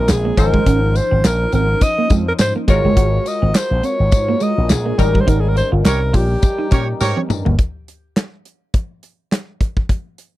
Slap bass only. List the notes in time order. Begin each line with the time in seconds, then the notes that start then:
0.10 A#1
0.38 G#1
0.67 G#1
1.12 G#1
1.25 A#1
1.53 G#1
2.10 F2
2.39 G#2
2.68 G#1
2.85 F#1
2.97 G#1
3.42 G#1
3.71 A#1
4.00 G#1
4.12 G#2
4.58 A#1
4.71 A#1
4.99 G#1
5.28 G#1
5.72 G1
5.85 C2
6.14 A#1
6.72 A#2
7.01 G#2
7.30 G2
7.46 G1